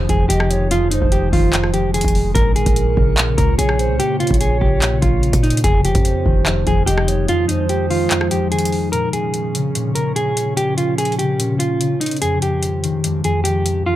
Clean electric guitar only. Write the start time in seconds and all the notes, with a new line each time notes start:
0.10 G#4
0.29 G4
0.71 F4
0.91 D#4
1.12 G4
1.33 F4
1.74 G4
1.94 G#4
2.35 A#4
2.56 G#4
3.38 A#4
3.58 G#4
4.00 G4
4.20 F4
4.41 G#4
4.61 G4
5.02 F4
5.43 D#4
5.64 G#4
5.85 G4
6.67 G#4
6.86 G4
7.29 F4
7.48 D#4
7.70 G4
7.90 F4
8.31 G4
8.52 G#4
8.92 A#4
9.13 G#4
9.95 A#4
10.16 G#4
10.57 G4
10.77 F4
10.98 G#4
11.19 G4
11.59 F4
12.01 D#4
12.22 G#4
12.42 G4
13.25 G#4
13.44 G4
13.86 F4